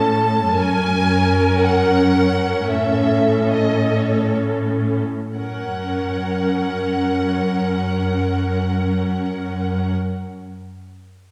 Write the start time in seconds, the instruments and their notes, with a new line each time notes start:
Already playing: cello section A2, viola section C#4 A4, violin section A5
0.54 cello section F#2, viola section C#4 A#4, violin section G#5
1.61 violin section F#5
2.70 cello section A2, viola section A4, violin section E5
3.52 violin section D#5
3.96 violin section C#5
5.36 cello section F#2, viola section C#4 A#4, violin section F#5